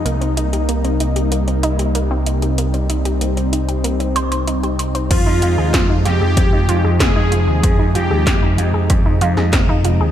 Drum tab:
CC |----------------|----------------|x---------------|----------------|
HH |xxxxxxxxxxxxx-xx|xxxxxxxxxxxxxxxx|x-x-x-x-x-x-x-x-|x-x-x-x-x-x-x-x-|
CP |----------------|----------------|----x-------x---|----x-------x---|
SD |----------------|----------------|----o-o-----o---|----o------oo---|
BD |----------------|----------------|o---o---o---o---|o---o---o---o---|